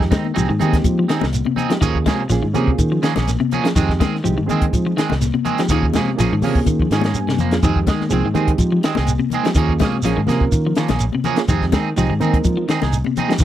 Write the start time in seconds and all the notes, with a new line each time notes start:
Already playing: F2 G#3 C4 D#4 G4
0.00 kick, snare
0.11 D#3 G#3 C4 D#4, muted clean electric guitar stroke, kick, snare, closed hi-hat, high conga, shekere
0.24 high conga
0.34 C2 F3 G#3 C4 D#4 G4 G#4, closed hi-hat, shekere
0.49 G#2 D#3
0.59 D#3 G#3 C4 D#4 G4 G#4, closed hi-hat, high conga, low conga, shekere
0.73 kick, snare, closed hi-hat
0.84 F3, kick, closed hi-hat, high conga, low conga, shekere
0.99 F3
1.08 D#3 C4 D#4 G#4, snare, closed hi-hat, shekere
1.21 C2, snare, high conga
1.33 closed hi-hat, high conga, shekere
1.45 C3, high conga
1.56 C4 D#4 G#4, closed hi-hat, low conga, shekere
1.70 F3 G#3 C4 D#4 G4, snare, closed hi-hat
1.80 D#2 D#3 F3 A#3 C#4 F4 G#4, kick, closed hi-hat, shekere
1.95 kick
2.06 C3 F3 G#3 A#3 C#4 G#4, kick, snare, closed hi-hat, high conga, shekere
2.30 A#1 F3 A#3 C#4 F4 G#4, snare, closed hi-hat, shekere
2.43 G#2 D#3
2.54 C3 F3 A#3 C#4 F4 G#4, closed hi-hat, high conga, low conga, shekere
2.68 kick
2.78 D#3, kick, closed hi-hat, shekere
2.92 F3
3.03 D#3 F3 A#3 C#4 G#4, snare, closed hi-hat, shekere
3.16 A#1 A#3 C#4 G#4, snare, closed hi-hat, high conga
3.27 snare, closed hi-hat, high conga, shekere
3.40 C3, high conga
3.51 F3 A#3 C#4 G#4, closed hi-hat, low conga, shekere
3.64 F3 A#3 C#4 F4 G#4, snare, closed hi-hat
3.76 F2 D#3 G#3 C4 D#4 G4 G#4, kick, closed hi-hat, shekere
3.89 kick, snare
3.99 D#3 G#3 C4 G#4, kick, snare, closed hi-hat, high conga, shekere
4.15 snare
4.23 C2 F3 G#3 C4 D#4 G4, closed hi-hat, shekere
4.38 G#2 D#3
4.46 D#3 G#3 C4 D#4 G#4, closed hi-hat, high conga, low conga, shekere
4.51 D#3 G#3 C4 G#4
4.62 kick, closed hi-hat
4.73 F3, kick, closed hi-hat, high conga, low conga, shekere
4.87 F3
4.97 D#3 G#3 C4 G#4, snare, closed hi-hat, shekere
5.10 C2, snare, high conga
5.21 snare, closed hi-hat, high conga, shekere
5.34 C3, high conga
5.45 D#3 G#3 C4 G#4, closed hi-hat, low conga, shekere
5.58 F3 G#3 C4 D#4 G4, snare, closed hi-hat
5.69 D#2 D#3 F3 A#3 C#4 F4 G#4, kick, closed hi-hat, shekere
5.83 kick
5.94 C3 F3 G#3 A#3 C#4 G#4, snare, closed hi-hat, high conga, low conga, shekere
6.05 high conga
6.16 A#1 F3 A#3 C#4 F4 G#4, snare, closed hi-hat, shekere
6.20 F3 G#4
6.32 G#2 D#3
6.42 C3 F3 A#3 C#4 F4 G#4, open hi-hat, high conga, low conga, shekere
6.55 kick
6.65 D#3, kick, closed hi-hat, high conga, shekere
6.80 F3, kick
6.90 G#2 D#3 F3 A#3 C#4 G#4, snare, closed hi-hat, shekere
7.01 C#4 G#4, snare, closed hi-hat, high conga
7.06 A#3
7.14 G2 G#5, closed hi-hat, high conga, shekere
7.28 C3, snare, high conga
7.38 F2 F3 A#3, muted clean electric guitar stroke, closed hi-hat, low conga, shekere
7.51 F3 A#3 C#4 F4 G#4, snare, closed hi-hat
7.62 F2 D#3 G#3 C4 D#4 G4 G#4, muted clean electric guitar stroke, kick, closed hi-hat, shekere
7.76 kick
7.87 D#3 G#3 G#4, muted clean electric guitar stroke, kick, snare, closed hi-hat, high conga, shekere
8.01 snare, high conga
8.09 C2 D#3 F3 G#3 C4 D#4 G#4, closed hi-hat, shekere
8.24 G#2 D#3
8.34 D#3 G#3 C4 D#4 G4 G#4, closed hi-hat, high conga, low conga, shekere
8.48 kick, closed hi-hat
8.58 F3, kick, closed hi-hat, shekere
8.72 F3
8.83 D#3 G#3 C4 G#4, snare, closed hi-hat, shekere
8.95 C2 G#3 C4 G#4, snare, high conga
9.06 closed hi-hat, high conga, shekere
9.19 C3, high conga
9.30 D#3 G#3, closed hi-hat, low conga, shekere
9.34 C4 G#4
9.43 F3 G#3 C4 D#4 G4, snare, closed hi-hat
9.55 D#2 D#3 F3 A#3 C#4 F4 G#4, kick, closed hi-hat, shekere
9.69 kick
9.79 C3 F3 G#3 A#3 C#4 G#4, kick, snare, closed hi-hat, high conga, low conga, shekere
9.92 high conga
10.02 A#1 F3 A#3 C#4 F4 G#4, closed hi-hat, shekere
10.06 snare
10.17 G#2 D#3
10.27 C3 F3 A#3 C#4 F4 G#4 A#4, snare, closed hi-hat, high conga, low conga, shekere
10.41 kick
10.52 D#3, kick, closed hi-hat, shekere
10.66 F3
10.75 D#3 F3 A#3 C#4, snare, closed hi-hat, shekere
10.88 A#1 A#3 C#4 G#4, snare, closed hi-hat, high conga
10.99 closed hi-hat, shekere
11.12 C3, high conga
11.24 F3 A#3 C#4 G#4, closed hi-hat, low conga, shekere
11.36 A#3 C#4 F4 G#4, snare, closed hi-hat
11.47 F2 D#3 G#3 C4 D#4 G4 G#4, kick, closed hi-hat, shekere
11.61 kick, snare
11.72 D#3 G#3 C4 D#4 G#4, kick, snare, closed hi-hat, high conga, shekere
11.96 C2 F3 G#3 C4 D#4 G4 G#4, snare, closed hi-hat, shekere
12.10 G#2 D#3
12.20 D#3 G#3 C4 D#4 G#4 A#4, closed hi-hat, high conga, low conga, shekere
12.34 kick, closed hi-hat
12.44 F3, kick, closed hi-hat, low conga, shekere
12.57 F3
12.68 D#3 C4 D#4 G#4, snare, closed hi-hat, shekere
12.82 C2 D#4 G#4, snare, high conga
12.93 closed hi-hat, shekere
13.04 C3, high conga
13.16 C4 D#4 G#4, closed hi-hat, low conga, shekere
13.28 F3 G#3 C4 D#4 G4, snare, closed hi-hat
13.38 D#2 D#3 A#3, kick, closed hi-hat, shekere